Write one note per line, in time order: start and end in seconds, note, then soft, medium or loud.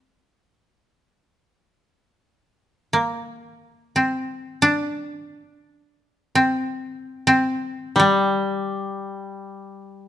0.00 1.29 C4 medium
0.00 0.12 D4 medium
2.93 5.72 A#3 soft
3.96 6.35 C4 soft
4.62 7.05 D4 medium
6.35 7.27 C4 medium
7.27 9.87 C4 medium
7.96 10.08 G3 soft